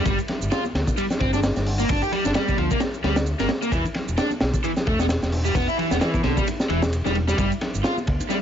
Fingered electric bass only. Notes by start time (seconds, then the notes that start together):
0.06 G1
0.42 G1
0.75 D2
1.21 G1
1.56 G1
1.90 G1
2.25 G1
2.58 D2
3.04 D2
3.40 G1
3.72 E1
4.08 E1
4.41 B1
4.87 E1
5.23 E1
5.55 E1
5.92 E1
6.24 B1
6.70 E1
7.06 E1
7.38 G1
7.75 G1
8.08 D2